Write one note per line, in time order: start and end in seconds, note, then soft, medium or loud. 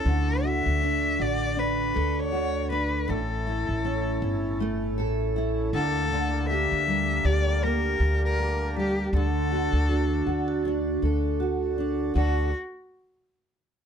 0.00 0.14 C#4 medium
0.00 0.14 E4 medium
0.00 0.47 A4 medium
0.00 1.94 A4 medium
0.00 12.12 A5 medium
0.04 0.62 D2 loud
0.04 3.09 D3 medium
0.04 3.04 D4 medium
0.04 3.05 F#4 medium
0.43 1.18 F#4 medium
0.43 1.23 E5 loud
0.66 1.15 D2 loud
0.82 1.56 D4 medium
1.19 1.91 A1 medium
1.19 2.31 F#4 medium
1.19 1.61 D5 loud
1.57 2.69 D4 medium
1.57 2.21 B4 loud
1.94 3.05 D2 loud
1.94 4.97 A4 medium
2.19 2.71 C#5 loud
2.32 3.17 F#4 medium
2.70 3.17 D4 medium
2.70 3.11 B4 medium
3.08 3.65 A1 loud
3.08 5.73 A2 medium
3.08 5.70 C#4 medium
3.08 5.71 E4 medium
3.08 4.60 A4 medium
3.47 4.21 E4 medium
3.69 4.18 A1 medium
3.85 5.82 C#4 medium
4.22 4.98 G1 loud
4.22 5.35 E4 medium
4.60 6.53 A3 medium
4.98 5.69 A1 medium
4.98 6.53 A4 medium
5.36 5.82 E4 medium
5.73 6.67 D2 loud
5.73 9.11 D3 medium
5.73 6.12 D3 medium
5.73 9.10 A#3 medium
5.73 9.10 D4 medium
5.73 9.11 G4 medium
5.73 6.45 A4 loud
6.12 9.14 D3 medium
6.49 7.25 G4 medium
6.49 7.27 E5 loud
6.72 7.20 D2 medium
6.87 8.75 G3 medium
7.25 7.96 D2 loud
7.25 8.38 G4 medium
7.25 7.65 D5 loud
7.63 9.13 A#3 medium
7.63 8.23 A#4 loud
8.00 9.09 D2 medium
8.25 8.73 A#4 loud
8.39 9.23 G4 medium
8.76 9.23 G3 medium
8.76 9.12 G4 medium
9.13 9.70 D2 loud
9.13 12.13 D3 medium
9.13 12.14 D4 medium
9.13 12.14 F#4 medium
9.13 10.62 A4 medium
9.52 10.26 F#4 medium
9.73 10.23 D2 loud
9.89 10.65 D4 medium
9.89 10.46 F#4 medium
10.26 10.98 D2 loud
10.26 11.40 F#4 medium
10.48 10.98 F#4 loud
10.65 11.78 D4 medium
11.02 12.12 D2 medium
11.02 11.19 D4 medium
11.02 12.16 A4 medium
11.40 12.12 F#4 medium
11.40 12.16 F#4 medium
11.78 12.15 D4 medium
12.14 12.51 D2 medium
12.14 12.47 D3 medium
12.14 12.52 D3 medium
12.14 12.47 D4 medium
12.14 12.52 D4 medium
12.14 12.51 F#4 medium
12.14 12.48 F#4 medium
12.14 12.52 F#4 medium
12.14 12.48 A4 medium
12.14 12.52 A4 medium
12.18 12.52 A5 medium